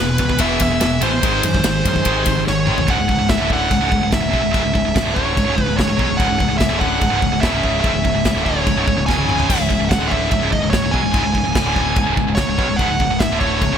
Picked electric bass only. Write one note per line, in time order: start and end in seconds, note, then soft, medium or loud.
0.00 0.17 E1 loud
0.20 0.37 C#2 medium
0.40 0.57 E1 loud
0.61 0.78 E1 medium
0.82 0.99 E1 medium
1.02 1.19 A1 loud
1.24 1.41 G#1 loud
1.43 1.61 F#2 medium
1.64 1.81 G#1 medium
1.85 2.02 F#2 medium
2.06 2.23 G#1 loud
2.26 2.43 G#1 medium
2.48 2.65 G#1 medium
2.69 2.85 G#1 medium
2.89 2.98 C#1 loud
2.99 3.08 C#1 medium
3.09 3.18 C#1 medium
3.19 3.29 C#1 medium
3.29 3.39 C#1 medium
3.40 3.69 D1 medium
3.71 3.81 C#1 medium
3.81 3.91 C#1 medium
3.92 4.01 C#1 medium
4.02 4.11 C#1 medium
4.13 4.22 C#1 medium
4.23 4.33 C#1 medium
4.33 4.43 B1 loud
4.44 4.53 C#1 medium
4.55 4.64 C#1 loud
4.65 4.74 C#1 medium
4.75 4.84 C#1 medium
4.87 4.95 C#1 medium
4.96 5.05 C#1 medium
5.06 5.34 D1 loud
5.37 5.46 C#1 medium
5.48 5.57 C#1 medium
5.58 5.67 C#1 medium
5.68 5.77 C#1 medium
5.79 5.88 C#1 medium
5.90 5.98 C#1 medium
5.99 6.08 B1 loud
6.10 6.19 C#1 medium
6.20 6.29 C#1 medium
6.30 6.39 C#1 medium
6.41 6.50 C#1 medium
6.51 6.60 C#1 medium
6.61 6.70 C#1 medium
6.71 7.00 D1 loud
7.02 7.11 C#1 loud
7.11 7.21 C#1 medium
7.22 7.30 C#1 medium
7.31 7.41 C#1 medium
7.43 7.52 E1 loud
7.52 7.81 C#1 medium
7.84 7.93 C#1 loud
7.93 8.03 C#1 medium
8.05 8.12 C#1 medium
8.13 8.23 C#1 medium
8.26 8.34 C#1 medium
8.35 8.64 D1 loud
8.67 8.75 C#1 medium
8.76 8.86 C#1 loud
8.87 8.95 C#1 medium
8.95 9.06 C#1 medium
9.09 9.17 E1 loud
9.17 9.46 C#1 loud
9.50 9.58 C#1 loud
9.59 9.69 C#1 medium
9.71 9.79 C#1 medium
9.80 9.89 C#1 medium
9.91 10.00 C#1 medium
10.01 10.29 D1 loud
10.32 10.41 C#1 medium
10.43 10.52 C#1 medium
10.53 10.62 C#1 medium
10.63 10.72 C#1 medium
10.73 10.83 C#1 medium
10.84 10.93 C#1 medium
10.94 11.03 B1 loud
11.04 11.14 C#1 medium
11.14 11.24 C#1 loud
11.25 11.35 C#1 medium
11.35 11.45 C#1 medium
11.46 11.55 C#1 medium
11.55 11.64 C#1 medium
11.65 11.94 D1 loud
11.97 12.06 C#1 medium
12.08 12.16 C#1 medium
12.17 12.27 C#1 medium
12.28 12.37 C#1 medium
12.38 12.46 C#1 medium
12.47 12.57 C#1 medium
12.59 12.68 B1 loud
12.69 12.79 C#1 medium
12.79 12.89 C#1 loud
12.89 12.99 C#1 medium
13.00 13.08 C#1 medium
13.09 13.19 C#1 medium
13.21 13.29 C#1 medium
13.30 13.59 D1 loud
13.62 13.70 C#1 medium
13.71 13.78 C#1 loud